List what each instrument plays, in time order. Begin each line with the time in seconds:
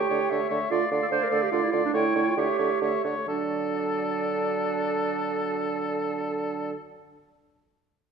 Already playing: clarinet G4, flute G5
0.10 bassoon D3, french horn A3, oboe C#5
0.30 bassoon D3, french horn A3, oboe C#5, flute E5
0.50 bassoon D3, french horn A3, oboe C#5
0.70 bassoon D3, french horn A3, clarinet F4, oboe D5, flute F5
0.91 bassoon D3, french horn A3, oboe D5
1.02 clarinet A4
1.11 bassoon D3, french horn A3, clarinet C5, oboe D5
1.23 clarinet A#4
1.30 bassoon D3, french horn A3, clarinet A4, oboe D5
1.43 clarinet G4
1.51 bassoon D3, french horn A3, clarinet F4, oboe D5
1.63 clarinet E4
1.72 bassoon D3, french horn A3, clarinet F4, oboe D5
1.86 clarinet D4
1.94 bassoon D3, french horn A3, clarinet E4, oboe C#5, flute G5
2.15 bassoon D3, french horn A3, oboe C#5
2.28 clarinet F4
2.37 bassoon D3, french horn A3, clarinet G4, oboe C#5, flute E5
2.58 bassoon D3, french horn A3, oboe C#5
2.82 bassoon D3, french horn A3, oboe C#5, flute E5
3.04 bassoon D3, french horn A3, oboe C#5
3.28 bassoon D3, french horn F#3, clarinet D4, oboe A4, flute D5